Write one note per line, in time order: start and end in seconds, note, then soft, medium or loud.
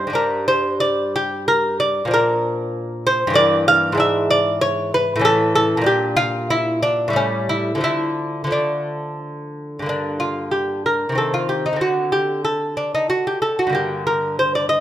0.00 0.13 D#4 soft
0.00 0.14 C5 medium
0.07 2.03 G2 medium
0.07 2.05 G3 soft
0.13 2.07 D4 soft
0.13 0.47 A#4 medium
0.48 0.80 C5 medium
0.80 1.13 D5 medium
1.16 1.47 G4 medium
1.48 1.79 A#4 medium
1.80 2.10 D5 medium
2.05 3.27 A#2 medium
2.05 3.32 F3 soft
2.11 3.33 D4 medium
2.11 3.03 A#4 medium
3.07 3.35 C5 loud
3.27 3.93 G2 medium
3.27 3.94 E3 medium
3.34 3.96 A#3 medium
3.34 3.67 D5 loud
3.68 3.98 F5 loud
3.92 5.17 G#2 medium
3.92 5.15 E3 medium
3.97 5.19 D4 medium
3.97 4.30 E5 medium
4.30 4.61 D5 loud
4.61 4.92 C#5 loud
4.94 5.24 B4 loud
5.16 5.77 A2 medium
5.16 5.82 E3 medium
5.21 5.83 C#4 medium
5.21 5.54 A4 loud
5.55 5.86 A4 loud
5.77 7.08 A#2 medium
5.82 7.09 G3 medium
5.82 6.81 D4 soft
5.86 6.17 G4 medium
6.17 6.49 F4 loud
6.50 6.82 E4 medium
6.83 7.14 D4 medium
7.08 7.77 A2 medium
7.08 7.75 G3 medium
7.13 7.77 A3 soft
7.13 7.48 C#4 medium
7.49 7.82 E4 medium
7.75 8.43 D3 medium
7.75 8.46 F3 soft
7.81 8.49 A3 soft
7.81 8.50 E4 medium
8.44 9.81 D3 medium
8.44 9.83 F3 soft
8.51 9.85 A3 soft
8.51 9.18 D4 medium
9.79 11.09 G2 soft
9.79 11.12 D3 soft
9.86 11.14 A#3 soft
9.86 10.21 D4 medium
10.20 10.52 F4 medium
10.51 10.84 G4 soft
10.86 11.17 A#4 medium
11.09 11.76 C3 soft
11.09 11.72 D#3 soft
11.15 11.75 C4 soft
11.15 11.35 A4 medium
11.34 11.51 F4 medium
11.49 11.66 G4 medium
11.66 11.81 D#4 medium
11.73 13.65 D3 soft
11.73 13.67 C4 soft
11.81 12.13 F#4 medium
12.12 12.44 G4 medium
12.45 12.76 A4 medium
12.77 12.94 D4 medium
12.95 13.09 D#4 medium
13.10 13.26 F#4 medium
13.27 13.41 G4 medium
13.42 13.58 A4 medium
13.59 13.75 F#4 medium
13.67 14.80 G2 soft
13.67 14.80 D3 soft
13.73 14.80 A#3 soft
13.73 14.06 G4 medium
14.07 14.37 A#4 medium
14.39 14.55 C5 medium
14.55 14.69 D5 medium
14.69 14.80 D#5 medium